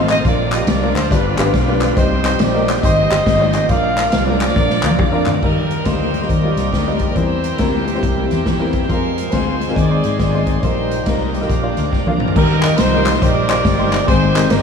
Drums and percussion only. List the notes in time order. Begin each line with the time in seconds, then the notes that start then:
0.09 clap, closed hi-hat
0.25 kick, closed hi-hat
0.52 clap, closed hi-hat
0.67 snare, closed hi-hat
0.96 clap, closed hi-hat
1.04 snare
1.11 kick, closed hi-hat
1.38 snare, clap, closed hi-hat
1.54 kick, snare, closed hi-hat
1.80 clap, closed hi-hat
1.97 kick, closed hi-hat
2.25 clap, closed hi-hat
2.39 snare, closed hi-hat
2.68 clap, closed hi-hat
2.76 snare
2.83 kick, closed hi-hat
3.10 snare, clap, closed hi-hat
3.26 kick, snare, closed hi-hat
3.53 clap, closed hi-hat
3.69 kick, closed hi-hat
3.97 clap, closed hi-hat
4.12 snare, closed hi-hat
4.41 clap, closed hi-hat
4.48 snare
4.56 kick, snare
4.70 snare
4.83 clap
4.91 high tom
4.99 kick, mid tom
5.26 clap, floor tom
5.34 floor tom
5.43 kick, crash
5.71 closed hi-hat
5.85 kick, snare, closed hi-hat
6.14 closed hi-hat
6.22 snare
6.29 kick, closed hi-hat
6.57 snare, closed hi-hat
6.73 kick, snare, closed hi-hat
6.99 kick, closed hi-hat
7.16 kick, closed hi-hat
7.44 closed hi-hat
7.58 kick, snare, closed hi-hat
7.88 closed hi-hat
7.95 snare
8.03 kick, closed hi-hat
8.31 snare, closed hi-hat
8.46 kick, snare, closed hi-hat
8.73 kick, closed hi-hat
8.90 kick, closed hi-hat
9.18 closed hi-hat
9.32 kick, snare, closed hi-hat
9.61 closed hi-hat
9.68 snare
9.76 kick, closed hi-hat
10.04 snare, closed hi-hat
10.20 kick, snare, closed hi-hat
10.47 kick, closed hi-hat
10.63 kick, closed hi-hat
10.91 closed hi-hat
11.06 kick, snare, closed hi-hat
11.34 closed hi-hat
11.41 snare
11.49 kick, closed hi-hat
11.77 snare, closed hi-hat
11.93 kick, snare
12.06 high tom
12.20 mid tom
12.28 floor tom
12.36 kick, crash
12.63 clap, closed hi-hat
12.78 snare, closed hi-hat
13.06 clap, closed hi-hat
13.14 snare
13.22 kick, closed hi-hat
13.49 snare, clap, closed hi-hat
13.65 kick, snare, closed hi-hat
13.92 clap, closed hi-hat
14.08 kick, closed hi-hat
14.36 clap, closed hi-hat
14.50 snare, closed hi-hat